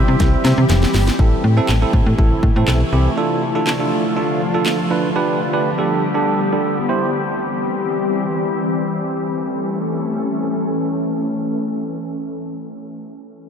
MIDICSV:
0, 0, Header, 1, 5, 480
1, 0, Start_track
1, 0, Key_signature, 0, "minor"
1, 0, Tempo, 495868
1, 1152, Time_signature, 4, 2, 24, 8
1, 13061, End_track
2, 0, Start_track
2, 0, Title_t, "Tine electric piano"
2, 0, Program_c, 0, 4
2, 0, Note_on_c, 0, 64, 96
2, 0, Note_on_c, 0, 67, 85
2, 0, Note_on_c, 0, 72, 88
2, 0, Note_on_c, 0, 76, 103
2, 574, Note_off_c, 0, 64, 0
2, 575, Note_off_c, 0, 67, 0
2, 576, Note_off_c, 0, 72, 0
2, 577, Note_off_c, 0, 76, 0
2, 1153, Note_on_c, 0, 60, 84
2, 1154, Note_on_c, 0, 64, 79
2, 1158, Note_on_c, 0, 69, 90
2, 1384, Note_off_c, 0, 60, 0
2, 1385, Note_off_c, 0, 64, 0
2, 1387, Note_off_c, 0, 69, 0
2, 1519, Note_on_c, 0, 60, 87
2, 1521, Note_on_c, 0, 64, 77
2, 1523, Note_on_c, 0, 69, 93
2, 1668, Note_off_c, 0, 60, 0
2, 1669, Note_off_c, 0, 64, 0
2, 1670, Note_off_c, 0, 69, 0
2, 1758, Note_on_c, 0, 60, 81
2, 1760, Note_on_c, 0, 64, 74
2, 1763, Note_on_c, 0, 69, 93
2, 1989, Note_off_c, 0, 60, 0
2, 1991, Note_off_c, 0, 64, 0
2, 1992, Note_off_c, 0, 69, 0
2, 2111, Note_on_c, 0, 60, 81
2, 2114, Note_on_c, 0, 64, 74
2, 2117, Note_on_c, 0, 69, 87
2, 2344, Note_off_c, 0, 60, 0
2, 2345, Note_off_c, 0, 64, 0
2, 2346, Note_off_c, 0, 69, 0
2, 2478, Note_on_c, 0, 60, 85
2, 2480, Note_on_c, 0, 64, 76
2, 2483, Note_on_c, 0, 69, 91
2, 2709, Note_off_c, 0, 60, 0
2, 2711, Note_off_c, 0, 64, 0
2, 2712, Note_off_c, 0, 69, 0
2, 2831, Note_on_c, 0, 60, 80
2, 2833, Note_on_c, 0, 64, 75
2, 2835, Note_on_c, 0, 67, 90
2, 2991, Note_off_c, 0, 60, 0
2, 2992, Note_off_c, 0, 64, 0
2, 2993, Note_off_c, 0, 67, 0
2, 3069, Note_on_c, 0, 62, 81
2, 3073, Note_on_c, 0, 65, 80
2, 3075, Note_on_c, 0, 69, 90
2, 3303, Note_off_c, 0, 62, 0
2, 3305, Note_off_c, 0, 65, 0
2, 3306, Note_off_c, 0, 69, 0
2, 3436, Note_on_c, 0, 62, 84
2, 3439, Note_on_c, 0, 65, 79
2, 3441, Note_on_c, 0, 69, 89
2, 3587, Note_off_c, 0, 62, 0
2, 3588, Note_off_c, 0, 65, 0
2, 3589, Note_off_c, 0, 69, 0
2, 3676, Note_on_c, 0, 62, 78
2, 3678, Note_on_c, 0, 65, 76
2, 3681, Note_on_c, 0, 69, 91
2, 3909, Note_off_c, 0, 62, 0
2, 3910, Note_off_c, 0, 65, 0
2, 3911, Note_off_c, 0, 69, 0
2, 4029, Note_on_c, 0, 62, 85
2, 4033, Note_on_c, 0, 65, 76
2, 4035, Note_on_c, 0, 69, 88
2, 4263, Note_off_c, 0, 62, 0
2, 4265, Note_off_c, 0, 65, 0
2, 4265, Note_off_c, 0, 69, 0
2, 4397, Note_on_c, 0, 62, 81
2, 4399, Note_on_c, 0, 65, 77
2, 4401, Note_on_c, 0, 69, 93
2, 4629, Note_off_c, 0, 62, 0
2, 4630, Note_off_c, 0, 65, 0
2, 4631, Note_off_c, 0, 69, 0
2, 4748, Note_on_c, 0, 62, 83
2, 4752, Note_on_c, 0, 65, 75
2, 4753, Note_on_c, 0, 71, 88
2, 4910, Note_off_c, 0, 62, 0
2, 4911, Note_off_c, 0, 65, 0
2, 4912, Note_off_c, 0, 71, 0
2, 4990, Note_on_c, 0, 62, 85
2, 4993, Note_on_c, 0, 67, 78
2, 4995, Note_on_c, 0, 71, 91
2, 5223, Note_off_c, 0, 62, 0
2, 5224, Note_off_c, 0, 67, 0
2, 5226, Note_off_c, 0, 71, 0
2, 5354, Note_on_c, 0, 62, 85
2, 5357, Note_on_c, 0, 67, 78
2, 5359, Note_on_c, 0, 71, 91
2, 5506, Note_off_c, 0, 62, 0
2, 5508, Note_off_c, 0, 67, 0
2, 5508, Note_off_c, 0, 71, 0
2, 5596, Note_on_c, 0, 62, 81
2, 5598, Note_on_c, 0, 67, 73
2, 5601, Note_on_c, 0, 69, 90
2, 5829, Note_off_c, 0, 62, 0
2, 5830, Note_off_c, 0, 67, 0
2, 5831, Note_off_c, 0, 69, 0
2, 5949, Note_on_c, 0, 62, 85
2, 5951, Note_on_c, 0, 67, 73
2, 5954, Note_on_c, 0, 69, 92
2, 6182, Note_off_c, 0, 62, 0
2, 6184, Note_off_c, 0, 67, 0
2, 6185, Note_off_c, 0, 69, 0
2, 6316, Note_on_c, 0, 62, 81
2, 6318, Note_on_c, 0, 67, 76
2, 6320, Note_on_c, 0, 69, 90
2, 6549, Note_off_c, 0, 62, 0
2, 6550, Note_off_c, 0, 67, 0
2, 6550, Note_off_c, 0, 69, 0
2, 6667, Note_on_c, 0, 64, 86
2, 6671, Note_on_c, 0, 67, 77
2, 6672, Note_on_c, 0, 72, 93
2, 6865, Note_off_c, 0, 64, 0
2, 6866, Note_off_c, 0, 67, 0
2, 6867, Note_off_c, 0, 72, 0
2, 13061, End_track
3, 0, Start_track
3, 0, Title_t, "Ambient pad"
3, 0, Program_c, 1, 92
3, 0, Note_on_c, 1, 52, 89
3, 0, Note_on_c, 1, 55, 80
3, 0, Note_on_c, 1, 60, 77
3, 0, Note_on_c, 1, 67, 103
3, 1114, Note_off_c, 1, 67, 0
3, 1129, Note_off_c, 1, 52, 0
3, 1129, Note_off_c, 1, 55, 0
3, 1129, Note_off_c, 1, 60, 0
3, 1151, Note_on_c, 1, 48, 81
3, 1152, Note_on_c, 1, 64, 93
3, 1153, Note_on_c, 1, 52, 79
3, 1153, Note_on_c, 1, 57, 78
3, 3052, Note_off_c, 1, 48, 0
3, 3053, Note_off_c, 1, 52, 0
3, 3053, Note_off_c, 1, 64, 0
3, 3070, Note_on_c, 1, 53, 80
3, 3070, Note_on_c, 1, 65, 92
3, 3071, Note_on_c, 1, 50, 87
3, 4954, Note_off_c, 1, 57, 0
3, 4972, Note_off_c, 1, 53, 0
3, 4972, Note_off_c, 1, 65, 0
3, 4993, Note_on_c, 1, 55, 73
3, 4993, Note_on_c, 1, 67, 92
3, 4994, Note_on_c, 1, 59, 78
3, 6635, Note_off_c, 1, 50, 0
3, 6656, Note_off_c, 1, 59, 0
3, 6656, Note_off_c, 1, 67, 0
3, 6669, Note_on_c, 1, 67, 88
3, 6670, Note_on_c, 1, 52, 80
3, 6670, Note_on_c, 1, 60, 75
3, 8794, Note_off_c, 1, 55, 0
3, 8809, Note_off_c, 1, 52, 0
3, 8809, Note_off_c, 1, 60, 0
3, 8809, Note_off_c, 1, 67, 0
3, 8830, Note_on_c, 1, 52, 81
3, 8830, Note_on_c, 1, 61, 74
3, 8831, Note_on_c, 1, 57, 73
3, 8831, Note_on_c, 1, 69, 90
3, 12338, Note_off_c, 1, 52, 0
3, 12338, Note_off_c, 1, 61, 0
3, 12339, Note_off_c, 1, 57, 0
3, 12339, Note_off_c, 1, 69, 0
3, 13061, End_track
4, 0, Start_track
4, 0, Title_t, "FM bass"
4, 0, Program_c, 2, 39
4, 79, Note_on_c, 2, 48, 104
4, 152, Note_off_c, 2, 48, 0
4, 195, Note_on_c, 2, 36, 105
4, 350, Note_off_c, 2, 36, 0
4, 430, Note_on_c, 2, 48, 112
4, 513, Note_off_c, 2, 48, 0
4, 559, Note_on_c, 2, 48, 103
4, 632, Note_off_c, 2, 48, 0
4, 672, Note_on_c, 2, 29, 106
4, 828, Note_off_c, 2, 29, 0
4, 912, Note_on_c, 2, 31, 91
4, 1068, Note_off_c, 2, 31, 0
4, 1154, Note_on_c, 2, 33, 107
4, 1309, Note_off_c, 2, 33, 0
4, 1393, Note_on_c, 2, 45, 96
4, 1549, Note_off_c, 2, 45, 0
4, 1633, Note_on_c, 2, 33, 92
4, 1789, Note_off_c, 2, 33, 0
4, 1872, Note_on_c, 2, 45, 100
4, 1955, Note_off_c, 2, 45, 0
4, 1998, Note_on_c, 2, 45, 102
4, 2072, Note_off_c, 2, 45, 0
4, 2115, Note_on_c, 2, 33, 99
4, 2270, Note_off_c, 2, 33, 0
4, 2352, Note_on_c, 2, 45, 99
4, 2435, Note_off_c, 2, 45, 0
4, 2479, Note_on_c, 2, 45, 99
4, 2552, Note_off_c, 2, 45, 0
4, 2592, Note_on_c, 2, 35, 98
4, 2748, Note_off_c, 2, 35, 0
4, 2832, Note_on_c, 2, 36, 89
4, 2988, Note_off_c, 2, 36, 0
4, 13061, End_track
5, 0, Start_track
5, 0, Title_t, "Drums"
5, 193, Note_on_c, 9, 38, 62
5, 193, Note_on_c, 9, 42, 92
5, 195, Note_on_c, 9, 36, 102
5, 289, Note_off_c, 9, 42, 0
5, 290, Note_off_c, 9, 38, 0
5, 292, Note_off_c, 9, 36, 0
5, 433, Note_on_c, 9, 42, 82
5, 434, Note_on_c, 9, 38, 82
5, 530, Note_off_c, 9, 42, 0
5, 531, Note_off_c, 9, 38, 0
5, 674, Note_on_c, 9, 38, 100
5, 674, Note_on_c, 9, 42, 109
5, 770, Note_off_c, 9, 38, 0
5, 771, Note_off_c, 9, 42, 0
5, 801, Note_on_c, 9, 38, 89
5, 898, Note_off_c, 9, 38, 0
5, 913, Note_on_c, 9, 46, 72
5, 914, Note_on_c, 9, 38, 103
5, 1009, Note_off_c, 9, 46, 0
5, 1010, Note_off_c, 9, 38, 0
5, 1041, Note_on_c, 9, 38, 97
5, 1041, Note_on_c, 9, 42, 48
5, 1137, Note_off_c, 9, 38, 0
5, 1138, Note_off_c, 9, 42, 0
5, 1153, Note_on_c, 9, 36, 102
5, 1250, Note_off_c, 9, 36, 0
5, 1633, Note_on_c, 9, 38, 90
5, 1635, Note_on_c, 9, 39, 110
5, 1730, Note_off_c, 9, 38, 0
5, 1732, Note_off_c, 9, 39, 0
5, 1872, Note_on_c, 9, 36, 84
5, 1969, Note_off_c, 9, 36, 0
5, 2115, Note_on_c, 9, 36, 91
5, 2212, Note_off_c, 9, 36, 0
5, 2351, Note_on_c, 9, 36, 84
5, 2448, Note_off_c, 9, 36, 0
5, 2593, Note_on_c, 9, 38, 94
5, 2594, Note_on_c, 9, 39, 114
5, 2690, Note_off_c, 9, 38, 0
5, 2691, Note_off_c, 9, 39, 0
5, 3553, Note_on_c, 9, 38, 89
5, 3555, Note_on_c, 9, 39, 110
5, 3650, Note_off_c, 9, 38, 0
5, 3651, Note_off_c, 9, 39, 0
5, 4510, Note_on_c, 9, 38, 93
5, 4512, Note_on_c, 9, 39, 113
5, 4607, Note_off_c, 9, 38, 0
5, 4609, Note_off_c, 9, 39, 0
5, 13061, End_track
0, 0, End_of_file